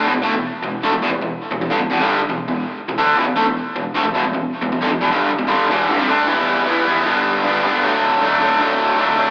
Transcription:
X:1
M:4/4
L:1/16
Q:1/4=154
K:Em
V:1 name="Overdriven electric guitar" clef=bass
[E,,B,,] [E,,B,,] [D,A,] [E,,B,,]2 z [E,,B,,]2 [D,A,] [E,,B,,] [E,,B,,] [E,,B,,] [E,,B,,]2 z [E,,B,,] | [E,,B,,] [G,,D,] [E,,B,,] [E,,B,,] [G,,D,G,]2 z [E,,B,,]2 [E,,B,,]2 z2 [E,,B,,] [D,A,D]2 | [E,,B,,] [E,,B,,] [D,A,] [E,,B,,]2 z [E,,B,,]2 [D,A,] [E,,B,,] [E,,B,,] [E,,B,,] [E,,B,,]2 z [E,,B,,] | [E,,B,,] [G,,D,] [E,,B,,] [E,,B,,] [G,,D,G,]2 z [E,,B,,] [G,,D,G,]2 [E,,B,,E,]2 [G,,D,] [C,G,] [D,A,D]2 |
[E,G,B,E]4 [E,G,B,E]2 [E,G,B,E]2 [G,,D,G,B,D]4 [G,,D,G,B,D]2 [G,,D,G,B,D]2 | [D,F,A,D]4 [D,F,A,D]2 [D,F,A,D]2 [D,F,A,D]4 [D,F,A,D]2 [D,F,A,D]2 |]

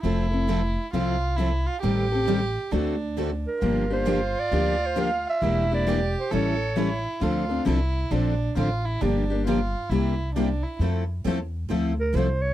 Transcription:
X:1
M:4/4
L:1/8
Q:"Swing" 1/4=134
K:Dm
V:1 name="Clarinet"
z8 | z6 z B- | B c2 d2 c f e- | e d2 c ^c3 z |
z8 | z8 | [K:F] z4 z B c _d |]
V:2 name="Violin"
E4 F2 E F | G4 D3 z | F8 | E2 G2 A2 E2 |
F2 E2 D2 F E | D2 F2 E2 D E | [K:F] z8 |]
V:3 name="Steel-string acoustic guitar"
[F,CEA] [CEA] [F,CEA] z [F,CEA] z [F,CEA] z | [_E,G,CGA] [CGA] [E,G,CGA] z [D,A,C^FA] z [D,A,CFA] z | [D,F,B,DG] [B,DG] [D,F,B,DG] z [D,F,B,DG] z [D,F,B,DG] z | [E,B,DG] [B,DG] [E,B,DG] z [E,G,^CEA] z [E,G,CEA] z |
[D,F,CDA] [CDA] [D,F,CDA] z [D,F,CDA] z [D,F,CDA] z | [D,F,B,DG] [B,DG] [D,F,B,DG] z [C,G,B,EG] z [C,G,B,EG] z | [K:F] [F,A,CEA] z [F,A,CEA] z [F,A,CEA] z [F,A,CEA] z |]
V:4 name="Steel-string acoustic guitar"
[F,CEA] z [F,CEA] z [F,CEA] z [F,CEA] z | [_E,G,CGA] z [E,G,CGA] z [D,A,C^FA] z [D,A,CFA] z | [D,F,B,DG] z [D,F,B,DG] z [D,F,B,DG] z [D,F,B,DG] z | [E,G,DEB] z [E,G,DEB] z [E,G,^CEA] z [E,G,CEA] z |
[D,F,CDA] z [D,F,CDA] z [D,F,CDA] z [D,F,CDA] z | [D,F,B,DG] z [D,F,B,DG] z [C,G,B,EG] z [C,G,B,EG] z | [K:F] [F,CEA] z [F,CEA] z [F,CEA] z [F,CEA] z |]
V:5 name="Upright bass" clef=bass
F,,,4 C,,4 | A,,,4 D,,4 | G,,,4 D,,4 | E,,,4 A,,,4 |
D,,2 C,,2 B,,,2 A,,,2 | G,,,4 C,,4 | [K:F] F,,2 E,,2 D,,2 C,,2 |]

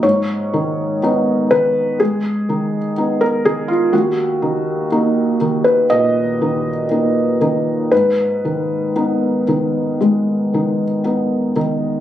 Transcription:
X:1
M:4/4
L:1/16
Q:1/4=61
K:Abdor
V:1 name="Felt piano"
d6 c2 A4- A B A F | G6- G c e8 | c12- c2 z2 |]
V:2 name="Felt piano"
A,,2 [E,E]2 [CE]2 [E,E]2 A,2 [E,E]2 [CE]2 [E,E]2 | E,,2 [E,E]2 [B,E]2 [E,E]2 B,,2 [E,E]2 [B,E]2 [E,E]2 | A,,2 [E,E]2 [CE]2 [E,E]2 A,2 [E,E]2 [CE]2 [E,E]2 |]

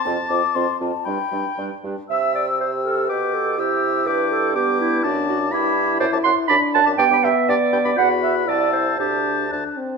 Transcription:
X:1
M:2/4
L:1/16
Q:1/4=121
K:C
V:1 name="Flute"
a2 d'2 c'2 a2 | b4 z4 | e'4 e'2 f'2 | g'4 g'4 |
g'4 g'4 | d'4 d'4 | [K:Dmix] a d' c' z a z c' d' | g d' b z g z b d' |
g'2 f'2 e'4 | g'4 f'2 z2 |]
V:2 name="Oboe"
a6 z2 | g6 z2 | e'4 e'4 | d'4 e'4 |
d'4 d'4 | a4 b4 | [K:Dmix] d a f z d z f a | d b g z d z g b |
b4 a4 | a4 a2 z2 |]
V:3 name="Clarinet"
F2 F2 F2 F2 | D2 D2 D2 D2 | e2 d2 c2 A2 | B2 A2 G4 |
B2 A2 G2 E2 | ^F2 F2 E4 | [K:Dmix] c2 c'2 b2 a2 | g2 e2 d4 |
f2 e2 d2 c2 | G4 z4 |]
V:4 name="French horn"
C2 C2 C2 C2 | G,2 G,2 G,2 G,2 | z4 G4- | G4 E4- |
E4 B,4 | D4 E4- | [K:Dmix] E4 D4 | B,8 |
F4 E4 | D4 D2 C2 |]
V:5 name="Bassoon" clef=bass
F,,2 F,,2 F,,2 F,,2 | G,,2 G,,2 G,,2 G,,2 | C,8 | B,,4 C,4 |
G,,8 | ^F,,4 G,,4 | [K:Dmix] F,, F,, F,, z F,, z F,, F,, | G,, G,, G,, z G,, z G,, G,, |
E,,4 C,,4 | D,,4 D,,2 z2 |]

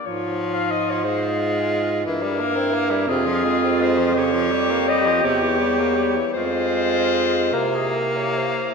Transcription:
X:1
M:6/8
L:1/16
Q:3/8=56
K:Fm
V:1 name="Clarinet"
d3 f e d c2 z4 | B6 A4 c2 | d4 e2 d6 | c6 B A B d c2 |]
V:2 name="Alto saxophone"
F6 F6 | =E6 F6 | G12 | F6 =E6 |]
V:3 name="Tenor saxophone" clef=bass
F,6 A,6 | =E, G, B, C B, G, C, F, A, C A, F, | D, F, G, B, G, F, C, =E, G, B, G, E, | A,6 B,6 |]
V:4 name="Bass clarinet" clef=bass
A,,12 | G,,6 F,,6- | F,,6 =E,,6 | F,,6 C,6 |]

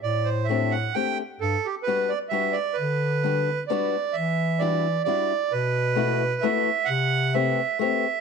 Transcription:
X:1
M:3/4
L:1/8
Q:"Swing" 1/4=132
K:G
V:1 name="Accordion"
d c e f g z | A G B d e d | B4 d2 | [K:Em] e2 d2 d2 |
B4 e2 | f2 e2 e2 |]
V:2 name="Steel-string acoustic guitar"
z2 [A,CDG] z [A,CDG] z | z2 [G,B,DF] z [G,B,DF] z | z2 [G,B,DF] z [G,B,DF] z | [K:Em] z2 [G,DEF] z [G,DEF] z |
z2 [A,B,EF] z [A,B,EF] z | z2 [A,B,CG] z [A,B,CG] z |]
V:3 name="Bass clarinet" clef=bass
A,,6 | G,, z4 z | D,6 | [K:Em] E,6 |
B,,6 | C,4- C, z |]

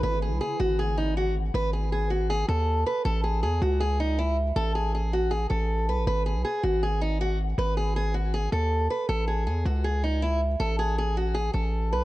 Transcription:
X:1
M:4/4
L:1/16
Q:1/4=159
K:G#phr
V:1 name="Steel-string acoustic guitar"
B2 G2 G2 F2 G2 D2 F2 z2 | B2 G2 G2 F2 G2 A4 B2 | A2 G2 G2 F2 G2 D2 E2 z2 | A2 G2 G2 F2 G2 A4 B2 |
B2 G2 G2 F2 G2 D2 F2 z2 | B2 G2 G2 F2 G2 A4 B2 | A2 G2 G2 F2 G2 D2 E2 z2 | A2 G2 G2 F2 G2 A4 B2 |]
V:2 name="808-style bass" clef=bass
G,,,3 B,,, z2 G,,,8- G,,,2 | G,,,8- G,,,2 D,,4 z2 | A,,,4 E,,2 C,,8- C,,2 | A,,,8- A,,,2 A,,,4 B,,, A,,, |
G,,,3 B,,, z2 G,,,8- G,,,2 | G,,,8- G,,,2 D,,4 z2 | A,,,4 E,,2 C,,8- C,,2 | A,,,8- A,,,2 A,,,4 B,,, z |]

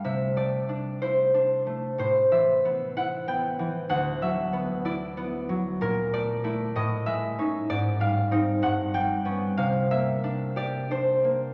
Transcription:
X:1
M:6/8
L:1/8
Q:3/8=63
K:Dm
V:1 name="Harp"
[Bdef] d2 c3 | c e2 ^f g2 | ^f e2 d3 | [K:Cmix] B d2 ^d e2 |
d f2 ^f g2 | f e2 d c2 |]
V:2 name="Harp"
[C,G,A,D] A, D E D A, | A,, E, =B, E B, E, | D,, ^F, =B, E B, F, | [K:Cmix] B,, A, [A,E] A,, ^G, [^C^D] |
_A,, G, [C_E] G,, G, [=B,^C] | C, B, D G D B, |]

